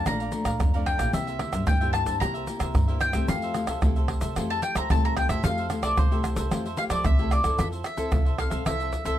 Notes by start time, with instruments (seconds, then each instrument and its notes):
0.06 upright bass A#1, nylon-string guitar A#2 F3 A3 D4, cavaquinho A4 D5 F5 A#5, mandolin A#5, pandeiro, tamborim, shaker, surdo
0.20 cavaquinho D5 F5 A#5, pandeiro, shaker
0.32 nylon-string guitar F3 A3 D4, muted cavaquinho stroke, pandeiro, shaker
0.45 upright bass A#2, cavaquinho D5 F5 A#5, pandeiro, tamborim, shaker, surdo
0.59 nylon-string guitar F2, upright bass F2, pandeiro, tamborim, shaker, surdo
0.74 nylon-string guitar F3 A3 D4, cavaquinho D5 F5 A#5, pandeiro, shaker
0.85 cavaquinho A4 D5 F5 A#5, mandolin G5, pandeiro, tamborim, surdo
0.98 upright bass A#1, nylon-string guitar A#3 E4 G4, cavaquinho D5 F5 A#5, pandeiro, tamborim, shaker, surdo
1.13 upright bass C2, nylon-string guitar C3, cavaquinho E4 A#4 C5 E5, mandolin E5, pandeiro, shaker, surdo
1.27 cavaquinho A#4 C5 E5, pandeiro, shaker
1.39 nylon-string guitar A#3 E4 G4, pandeiro, tamborim
1.52 upright bass G2, cavaquinho A#4 C5 E5, pandeiro, tamborim, shaker, surdo
1.66 upright bass G2, nylon-string guitar G2, cavaquinho E4 A#4 C5 E5, mandolin G5, pandeiro, tamborim, shaker, surdo
1.81 nylon-string guitar A#3 E4 G4, cavaquinho A#4 C5 E5, pandeiro, shaker
1.93 mandolin A5, pandeiro, tamborim, shaker, surdo
2.06 upright bass G2, cavaquinho A#4 C5 E5, pandeiro, shaker
2.20 upright bass C2, nylon-string guitar C3 A#3 E4 G4, cavaquinho E4 A#4 C5 E5, mandolin A#5, pandeiro, tamborim, shaker, surdo
2.34 cavaquinho A#4 C5 E5, pandeiro, shaker
2.47 nylon-string guitar A#3 E4 G4, muted cavaquinho stroke, pandeiro, shaker
2.59 upright bass C3, cavaquinho A#4 C5 E5, pandeiro, tamborim, shaker, surdo
2.75 upright bass G2, nylon-string guitar G2, pandeiro, tamborim, shaker, surdo
2.88 nylon-string guitar A#3 E4 G4, cavaquinho A#4 C5 E5, pandeiro, shaker
3.01 cavaquinho E4 A#4 C5 E5, mandolin G5, pandeiro, tamborim, shaker, surdo
3.13 upright bass C2, nylon-string guitar A3 E4 G4, cavaquinho A#4 C5 E5, pandeiro, tamborim, shaker, surdo
3.28 upright bass F2, nylon-string guitar F3, cavaquinho F4 A4 C5 E5, mandolin F5, pandeiro, shaker, surdo
3.42 cavaquinho A4 C5 E5, pandeiro, shaker
3.54 nylon-string guitar A3 E4 G4, pandeiro, tamborim, shaker
3.67 upright bass C2, cavaquinho A4 C5 E5, pandeiro, tamborim, shaker, surdo
3.82 upright bass C2, nylon-string guitar C3 A3 E4 G4, cavaquinho F4 A4 C5 E5, pandeiro, tamborim, shaker, surdo
3.96 cavaquinho A4 C5 E5, pandeiro, shaker
4.08 pandeiro, tamborim, surdo
4.21 upright bass C2, cavaquinho A4 C5 E5, pandeiro, shaker
4.36 upright bass F2, nylon-string guitar F3 A3 E4 G4, cavaquinho F4 A4 C5 E5, pandeiro, tamborim, shaker, surdo
4.50 cavaquinho A4 C5 E5, mandolin A5, pandeiro, shaker
4.62 mandolin G5, muted cavaquinho stroke, pandeiro, shaker
4.75 upright bass F3, cavaquinho A4 C5 E5, mandolin A#5, pandeiro, tamborim, shaker, surdo
4.90 upright bass C2, nylon-string guitar C3 A3 E4 G4, mandolin A5, pandeiro, tamborim, shaker, surdo
5.04 cavaquinho A4 C5 E5, mandolin A#5, pandeiro, shaker
5.16 cavaquinho F4 A4 C5 E5, mandolin G5, pandeiro, tamborim, surdo
5.29 upright bass F2, nylon-string guitar A3 E4 G4, cavaquinho A4 C5 E5, mandolin E5, pandeiro, tamborim, shaker, surdo
5.44 upright bass F2, nylon-string guitar F3 A3 E4 G4, cavaquinho F4 A4 C5 E5, mandolin F5, pandeiro, shaker, surdo
5.58 cavaquinho A4 C5 E5, pandeiro, shaker
5.70 nylon-string guitar A3 E4 G4, pandeiro, tamborim, shaker
5.83 upright bass C2, cavaquinho A4 C5 E5, mandolin D5, pandeiro, tamborim, shaker, surdo
5.97 upright bass C2, nylon-string guitar C3, cavaquinho F4 A4 C5 E5, mandolin C5, pandeiro, tamborim, shaker, surdo
6.11 nylon-string guitar A3 E4 G4, cavaquinho A4 C5 E5, pandeiro, shaker
6.24 pandeiro, tamborim, shaker, surdo
6.36 upright bass C2, cavaquinho A4 C5 E5, pandeiro, shaker
6.51 upright bass F2, nylon-string guitar F3 A3 E4 G4, cavaquinho F4 A4 C5 E5, pandeiro, tamborim, shaker, surdo
6.65 cavaquinho A4 C5 E5, pandeiro, shaker
6.77 nylon-string guitar A3 E4 G4, mandolin F5, muted cavaquinho stroke, pandeiro, shaker
6.90 upright bass F3, cavaquinho A4 C5 E5, mandolin D5, pandeiro, tamborim, shaker, surdo
7.05 upright bass C2, nylon-string guitar C3, mandolin E5, pandeiro, tamborim, shaker, surdo
7.19 nylon-string guitar A3 E4 G4, cavaquinho A4 C5 E5, pandeiro, shaker
7.31 cavaquinho F4 A4 C5 E5, mandolin D5, pandeiro, tamborim, shaker
7.43 upright bass F2, nylon-string guitar C4 E4 A4, cavaquinho A4 C5 E5, pandeiro, tamborim, shaker, surdo
7.58 upright bass F2, nylon-string guitar F3, cavaquinho F4 A4 C5 E5, mandolin E5, pandeiro, tamborim, shaker, surdo
7.72 cavaquinho A4 C5 E5, pandeiro, shaker
7.84 mandolin E5, muted cavaquinho stroke, pandeiro, tamborim, shaker
7.97 nylon-string guitar C4 E4 A4, cavaquinho A4 C5 E5, pandeiro, shaker, surdo
8.12 upright bass C2, nylon-string guitar C3, cavaquinho F4 A4 C5 E5, pandeiro, tamborim, shaker, surdo
8.25 cavaquinho A4 C5 E5, pandeiro, shaker
8.38 nylon-string guitar C4 E4 A4, mandolin F5, pandeiro, tamborim
8.50 upright bass C2, cavaquinho A4 C5 E5, pandeiro, shaker, surdo
8.66 upright bass C2, nylon-string guitar F3 C4 E4 A4, cavaquinho F4 A4 C5 E5, mandolin E5, pandeiro, tamborim, shaker, surdo
8.80 cavaquinho A4 C5 E5, pandeiro, shaker
8.92 muted cavaquinho stroke, pandeiro, shaker, surdo
9.05 upright bass C2, nylon-string guitar C4 E4 A4, cavaquinho A4 C5 E5, mandolin E5, pandeiro, shaker, surdo